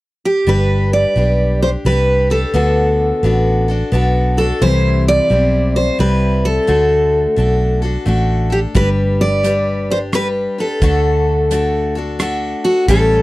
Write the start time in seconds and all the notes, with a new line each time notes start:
0.25 G4
0.47 G1 G3 D4 G4 B4
0.93 D5
1.16 B1 G3 D4 G4 B4
1.62 D4 G4 C5
1.85 C2 G3 D4 G4 B4
2.30 D4 G4 A4 B4
2.54 D2 D3 B3 D4 F#4 A4
3.23 A1 B3 D4 F#4 A4
3.68 D4 F#4 A4
3.92 B1 B3 D4 F#4 A4
4.37 D4 F#4 A4
4.61 C2 C3 E3 G3 C4 E4 C5
5.08 D5
5.30 B1 G3 C4 E4 C5
5.76 C5
5.99 C2 G3 C4 E4 B4
6.45 A4
6.67 D2 D3 A3 D4 F#4 A4
7.36 B1 A3 D4 F#4 A4
7.82 D4 F#4 A4
8.06 A1 A3 D4 F#4 A4
8.50 D4 G4 A4
8.75 G1 G3 D4 G4 B4, kick, closed hi-hat
9.21 D5
9.43 G3 D4 G4 B4, closed hi-hat
9.90 D4 G4 C5
10.12 G3 D4 G4 B4, cross-stick, closed hi-hat
10.58 D4 G4 A4 B4
10.82 D2 D3 A3 D4 F#4 A4, kick, closed hi-hat
11.51 A3 D4 F#4 A4, closed hi-hat
11.95 D4 F#4 A4
12.19 A3 D4 F#4 A4, cross-stick, closed hi-hat
12.64 D4 F#4 A4
12.88 A1 A2 E3 G3 C#4 G4 A4, kick, closed hi-hat